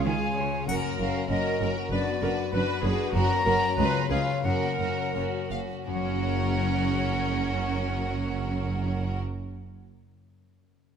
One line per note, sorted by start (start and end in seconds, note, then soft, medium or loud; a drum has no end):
0.00 0.48 C#2 medium
0.00 0.71 C#3 medium
0.00 1.94 C#4 soft
0.00 0.35 G#4 soft
0.00 0.51 G#4 soft
0.00 0.20 G#5 soft
0.05 0.13 D#3 soft
0.05 0.37 F4 soft
0.05 0.37 G#4 soft
0.05 0.36 C#5 soft
0.05 0.37 F5 soft
0.05 0.67 G#5 medium
0.21 0.70 G#5 soft
0.36 0.67 C#3 soft
0.36 0.67 C#4 soft
0.36 0.69 F4 soft
0.36 1.14 C#5 soft
0.36 0.68 C#5 soft
0.52 0.70 G#4 soft
0.68 0.76 F#1 soft
0.68 1.91 F#2 soft
0.68 0.76 F#2 soft
0.68 0.98 C#4 soft
0.68 0.99 F#4 soft
0.68 0.99 A#4 soft
0.68 1.26 A#4 medium
0.68 0.75 F#5 medium
0.68 triangle soft
0.84 1.94 A#3 soft
0.99 1.08 F#1 soft
0.99 1.07 F#2 soft
0.99 1.28 C#4 soft
0.99 1.75 F#4 soft
0.99 1.28 F#4 soft
0.99 1.29 A#4 soft
0.99 1.29 F5 soft
1.15 1.45 C#5 soft
1.29 1.38 F#1 soft
1.29 1.38 F#2 soft
1.29 1.60 C#4 soft
1.29 1.60 F#4 soft
1.29 1.90 A#4 soft
1.29 1.60 A#4 soft
1.29 1.69 D#5 soft
1.29 2.52 F#5 soft
1.46 1.94 C#5 soft
1.60 1.68 F#1 soft
1.60 1.69 F#2 soft
1.60 1.91 C#4 soft
1.60 1.91 F#4 soft
1.60 1.94 A#4 soft
1.60 1.92 A#4 soft
1.77 2.22 F#4 soft
1.91 1.99 F#1 soft
1.91 2.00 F#2 soft
1.91 3.13 F#2 soft
1.91 2.21 D4 soft
1.91 2.21 F#4 soft
1.91 1.99 B4 medium
1.91 2.23 B4 soft
1.91 2.49 D5 medium
2.07 3.17 B3 soft
2.22 2.30 F#1 soft
2.22 2.30 F#2 soft
2.22 2.52 D4 soft
2.22 2.52 F#4 soft
2.22 2.97 F#4 soft
2.22 2.30 A#4 medium
2.22 2.53 B4 soft
2.38 2.66 D5 soft
2.52 2.62 F#1 soft
2.52 2.61 F#2 soft
2.52 2.83 D4 soft
2.52 2.83 F#4 soft
2.52 2.83 B4 medium
2.52 2.84 B4 soft
2.52 3.80 F#5 soft
2.68 3.17 D5 soft
2.83 2.92 F#1 soft
2.83 2.92 F#2 soft
2.83 3.14 D4 soft
2.83 3.13 F#4 soft
2.83 3.14 G#4 soft
2.83 3.17 B4 soft
2.83 3.15 B4 soft
2.98 3.44 F#4 soft
3.14 3.22 F#1 medium
3.14 3.80 F#2 medium
3.14 3.23 F#2 medium
3.14 3.45 C#4 soft
3.14 3.45 F#4 soft
3.14 3.45 F#4 medium
3.14 3.45 A#4 medium
3.14 4.06 A#5 medium
3.30 3.80 A#3 soft
3.45 3.54 F#1 medium
3.45 3.55 F#2 medium
3.45 3.77 C#4 soft
3.45 3.80 F#4 soft
3.45 3.77 F#4 medium
3.45 3.53 A#4 medium
3.45 3.77 A#4 soft
3.61 4.26 C#5 medium
3.78 3.86 C#2 medium
3.78 3.87 C#2 medium
3.78 4.47 C#3 medium
3.78 4.10 C#4 medium
3.78 4.10 F4 soft
3.78 4.10 B4 medium
3.78 4.10 B4 soft
3.94 4.47 B3 soft
4.11 4.19 C#2 medium
4.11 4.19 C#2 soft
4.11 4.44 C#4 soft
4.11 4.47 F4 soft
4.11 4.44 F4 soft
4.11 4.19 G#4 soft
4.11 4.44 B4 soft
4.11 4.47 F5 medium
4.28 4.96 C#5 soft
4.45 4.53 F#1 soft
4.45 5.86 F#2 soft
4.45 4.53 F#2 soft
4.45 4.79 C#4 soft
4.45 4.79 F#4 soft
4.45 4.79 A#4 soft
4.45 5.49 A#4 soft
4.45 5.51 F#5 medium
4.62 6.00 A#3 soft
4.80 4.88 F#1 soft
4.80 4.88 F#2 soft
4.80 5.14 C#4 soft
4.80 5.68 F#4 soft
4.80 5.14 F#4 soft
4.80 5.14 A#4 soft
4.97 5.32 C#5 soft
5.15 5.23 F#1 soft
5.15 5.23 F#2 soft
5.15 5.50 C#4 soft
5.15 5.50 F#4 soft
5.15 5.24 C#5 soft
5.15 8.82 F#5 soft
5.33 6.21 C#5 soft
5.51 5.59 F#1 soft
5.51 5.59 F#2 soft
5.51 5.87 C#4 soft
5.51 5.87 F#4 soft
5.51 8.82 A#4 soft
5.51 5.60 F5 soft
5.69 6.14 F#4 soft
5.87 9.18 F#1 soft
5.87 9.77 F#2 soft
5.87 9.18 F#2 soft
5.87 9.18 C#4 soft
5.87 9.19 F#4 soft
5.87 9.18 A#4 soft
5.87 9.18 F#5 medium
5.94 9.63 F#3 soft
6.01 9.32 A#3 soft
6.08 9.39 C#4 soft
6.15 9.46 F#4 soft
6.22 9.53 C#5 soft